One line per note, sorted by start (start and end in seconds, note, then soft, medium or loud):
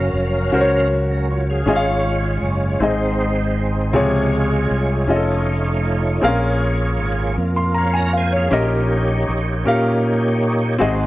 0.00 0.11 F#1 medium
0.00 1.63 F#3 medium
0.00 0.46 C#4 medium
0.00 0.88 C#4 medium
0.00 0.46 F#4 medium
0.00 0.46 A#4 medium
0.00 0.88 A#4 medium
0.00 0.47 F5 medium
0.00 0.88 F5 soft
0.00 1.68 C#6 soft
0.14 0.49 F1 medium
0.52 1.63 C#2 medium
0.52 1.59 C#4 medium
0.52 1.59 F#4 medium
0.52 1.60 A#4 medium
0.52 0.60 C5 medium
0.61 1.63 C#5 medium
1.11 1.29 C#4 soft
1.11 1.28 A#4 soft
1.30 1.48 F4 soft
1.30 1.48 C#5 medium
1.50 1.85 G#4 soft
1.50 1.85 F5 medium
1.66 2.38 G#1 medium
1.66 2.77 G#2 medium
1.66 2.80 G#3 medium
1.66 2.73 C#4 medium
1.66 2.81 C#4 soft
1.66 2.81 F4 medium
1.66 2.74 F4 medium
1.66 2.74 G#4 medium
1.66 2.81 C#5 medium
1.66 1.74 D#5 medium
1.76 2.78 F5 medium
2.42 2.77 F#1 medium
2.79 3.91 G#1 medium
2.79 3.91 G#2 medium
2.79 3.92 G#3 medium
2.79 3.94 C4 medium
2.79 3.87 C4 medium
2.79 3.95 D#4 soft
2.79 3.88 D#4 medium
2.79 3.88 G#4 medium
2.79 3.94 C5 medium
2.79 3.89 D#5 medium
3.93 4.66 C#2 medium
3.93 5.01 C3 medium
3.93 5.05 F3 soft
3.93 5.08 G#3 medium
3.93 5.07 F4 soft
3.93 5.01 F4 medium
3.93 5.08 G#4 medium
3.93 5.02 G#4 medium
3.93 5.08 C#5 soft
3.93 5.02 C#5 medium
4.71 5.06 C2 medium
5.08 6.19 F1 medium
5.08 6.23 A3 medium
5.08 6.15 C#4 medium
5.08 6.23 D#4 soft
5.08 6.23 F4 soft
5.08 6.16 F4 medium
5.08 5.16 G#4 soft
5.08 6.23 C#5 medium
5.08 6.17 D#5 medium
5.16 6.19 A4 medium
6.21 6.99 A#1 medium
6.21 7.33 A#2 medium
6.21 8.49 A#3 medium
6.21 6.29 C4 medium
6.21 8.49 F4 soft
6.21 7.30 G#4 medium
6.21 7.30 A#4 medium
6.21 7.31 F5 medium
6.26 7.32 C#4 medium
6.26 7.37 G#4 soft
6.26 7.36 C#5 medium
7.00 7.35 G#1 medium
7.38 8.48 F2 medium
7.56 7.75 C6 soft
7.75 7.95 C#5 soft
7.75 7.95 F5 soft
7.75 7.93 A#5 medium
7.94 8.14 C#5 soft
7.94 8.12 G#5 medium
7.94 8.14 A#5 medium
8.13 8.32 F5 soft
8.17 8.34 C5 soft
8.17 8.34 G#5 medium
8.33 8.71 G#4 soft
8.33 8.69 C#5 soft
8.33 8.71 F5 soft
8.51 9.24 A#1 medium
8.51 9.62 A#2 medium
8.51 10.77 A#3 medium
8.51 9.58 C#4 medium
8.51 10.77 D#4 medium
8.51 9.59 G4 medium
8.51 10.77 G4 medium
8.51 9.59 A#4 medium
8.51 10.77 C#5 medium
8.51 9.60 D#5 medium
9.29 9.63 A#1 medium
9.65 10.77 A#2 medium
9.65 10.72 C#4 medium
9.65 10.73 G4 medium
9.65 10.73 A#4 medium
9.65 10.74 F5 medium
10.78 11.07 G#1 medium
10.78 11.07 G#2 medium
10.78 11.07 G#3 medium
10.78 11.07 C4 medium
10.78 11.07 D#4 medium
10.78 11.07 F#4 medium
10.78 11.07 G#4 medium
10.78 11.07 C5 medium
10.78 11.07 D#5 medium
10.83 11.07 F#4 medium